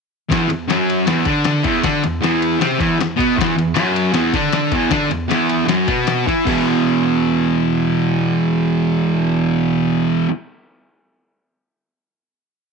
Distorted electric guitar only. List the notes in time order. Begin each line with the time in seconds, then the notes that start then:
0.29 E2 E3
0.48 E2
0.68 F#2 F#3
1.07 E2 E3
1.25 D3 D4
1.63 E2 E3
1.84 D3 D4
2.03 E2
2.21 E2 E3
2.59 C3 C4
2.77 E2 E3
2.99 E2
3.16 B2 B3
3.35 E2 E3
3.57 E2
3.74 F#2 F#3
4.13 E2 E3
4.33 D3 D4
4.72 E2 E3
4.90 D3 D4
5.08 E2
5.28 E2 E3
5.66 F#2 F#3
5.87 B2 B3
6.27 E3 E4
6.45 E2 B2 E3